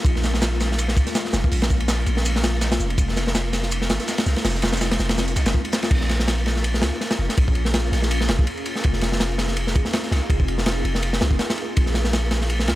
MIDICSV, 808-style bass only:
0, 0, Header, 1, 2, 480
1, 0, Start_track
1, 0, Key_signature, -5, "minor"
1, 0, Tempo, 365854
1, 75, Time_signature, 4, 2, 24, 8
1, 16731, End_track
2, 0, Start_track
2, 0, Title_t, "808-style bass"
2, 0, Program_c, 0, 38
2, 60, Note_on_c, 0, 34, 96
2, 1266, Note_on_c, 0, 37, 87
2, 1286, Note_off_c, 0, 34, 0
2, 1388, Note_off_c, 0, 37, 0
2, 1752, Note_on_c, 0, 29, 108
2, 1871, Note_off_c, 0, 29, 0
2, 1991, Note_on_c, 0, 34, 99
2, 2696, Note_off_c, 0, 34, 0
2, 2711, Note_on_c, 0, 34, 93
2, 3655, Note_off_c, 0, 34, 0
2, 3673, Note_on_c, 0, 29, 88
2, 3892, Note_off_c, 0, 29, 0
2, 3909, Note_on_c, 0, 29, 93
2, 5116, Note_on_c, 0, 32, 89
2, 5136, Note_off_c, 0, 29, 0
2, 5233, Note_off_c, 0, 32, 0
2, 5594, Note_on_c, 0, 36, 106
2, 5712, Note_off_c, 0, 36, 0
2, 5834, Note_on_c, 0, 29, 102
2, 6537, Note_off_c, 0, 29, 0
2, 6556, Note_on_c, 0, 29, 93
2, 7027, Note_off_c, 0, 29, 0
2, 7035, Note_on_c, 0, 36, 94
2, 7153, Note_off_c, 0, 36, 0
2, 7165, Note_on_c, 0, 29, 87
2, 7264, Note_off_c, 0, 29, 0
2, 7752, Note_on_c, 0, 34, 95
2, 8955, Note_on_c, 0, 37, 90
2, 8974, Note_off_c, 0, 34, 0
2, 9072, Note_off_c, 0, 37, 0
2, 9432, Note_on_c, 0, 29, 107
2, 9551, Note_off_c, 0, 29, 0
2, 9678, Note_on_c, 0, 34, 99
2, 10379, Note_off_c, 0, 34, 0
2, 10393, Note_on_c, 0, 34, 98
2, 10864, Note_off_c, 0, 34, 0
2, 10872, Note_on_c, 0, 29, 97
2, 10991, Note_off_c, 0, 29, 0
2, 11004, Note_on_c, 0, 34, 92
2, 11103, Note_off_c, 0, 34, 0
2, 11609, Note_on_c, 0, 29, 99
2, 12800, Note_on_c, 0, 32, 89
2, 12820, Note_off_c, 0, 29, 0
2, 12915, Note_off_c, 0, 32, 0
2, 13273, Note_on_c, 0, 36, 105
2, 13392, Note_off_c, 0, 36, 0
2, 13510, Note_on_c, 0, 29, 103
2, 14215, Note_off_c, 0, 29, 0
2, 14231, Note_on_c, 0, 29, 96
2, 14704, Note_off_c, 0, 29, 0
2, 14712, Note_on_c, 0, 36, 93
2, 14827, Note_off_c, 0, 36, 0
2, 14835, Note_on_c, 0, 29, 93
2, 14938, Note_off_c, 0, 29, 0
2, 15443, Note_on_c, 0, 34, 98
2, 16632, Note_on_c, 0, 37, 88
2, 16651, Note_off_c, 0, 34, 0
2, 16731, Note_off_c, 0, 37, 0
2, 16731, End_track
0, 0, End_of_file